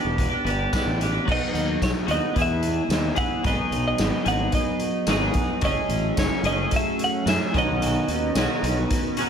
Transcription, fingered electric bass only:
0.04 E1
0.44 G1
0.85 A1
1.28 B1
1.54 D#2
1.81 B1
2.08 D#2
2.36 E2
2.88 D#2
3.44 G#1
3.71 B1
3.99 G#1
4.26 G#1
5.07 G#1
5.62 F#1
5.89 A1
6.17 F#1
6.43 F#1
7.25 F#2
7.55 B1
8.08 D#2
8.35 B1
8.63 B1

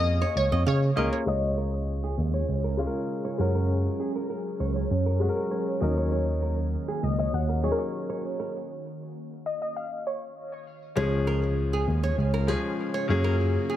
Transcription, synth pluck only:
Already playing: D#5
0.37 C#5
0.68 C#5
1.28 D#5
7.04 D#5
7.19 D#5
7.34 F#5
7.64 C#5
7.72 A#4
7.79 C#5
9.46 D#5
9.62 D#5
9.76 F5
10.07 C#5

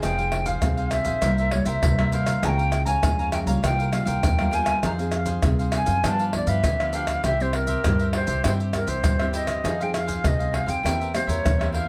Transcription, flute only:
0.03 G5
0.46 F5
0.92 E5
1.52 C#5
1.66 E5 G5
2.13 F5
2.45 G5 A5
2.86 G#5
3.33 G5
3.65 G5
3.93 F5
4.07 G5
4.54 G#5
4.85 A#5
5.16 F5
5.76 G#5
6.06 A5
6.36 D5
6.48 E5
6.95 F5
7.26 E5
7.42 C5
7.55 A#4
8.15 C5
8.46 C5
8.76 A#4
8.89 C5
9.36 D#5
9.82 G5
9.95 F5
10.27 D#5
10.55 F5
10.69 G5
11.15 C5
11.29 C#5
11.74 F5

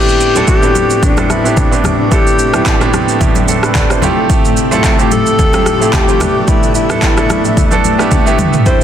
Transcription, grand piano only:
Already playing: A2 B3 C4 D4 E4 G4
0.35 A2 B3 C4 D4 E4 A4
0.62 A2 B3 C4 D4 E4 F#4
0.71 G4
1.17 A2 B3 C4 D4 E4 A4
1.44 A2 B3 C4 D4 E4 G4
1.71 A2 B3 C4 D4 E4 G4
2.11 A2 B3 C4 D4 E4 A4
2.53 A2 B3 C4 D4 E4 G4
2.80 A2 B3 C4 D4 E4 G4
3.21 G3 E4
3.36 B3 G4
3.48 C4 A4
3.63 D4 B4
3.75 D5
3.90 E4 C5
4.02 A3 C4 E4 F4 G4
4.71 A3 C4 E4 F4 A4
4.98 A3 C4 E4 F4 G4
5.53 A3 C4 E4 F4 G4
5.80 A3 C4 E4 F4 G4
6.07 A3 C4 E4 F4 G4
6.20 A3 B3 D4 E4 G4
6.89 A3 B3 D4 E4 A4
7.17 A3 B3 D4 E4 A4
7.71 A3 B3 D4 E4 A4
7.98 A3 B3 D4 E4 G4
8.12 A5
8.26 A3 B3 D4 E4 G4 E5
8.65 A2 A3 C4 D4 E4 G4

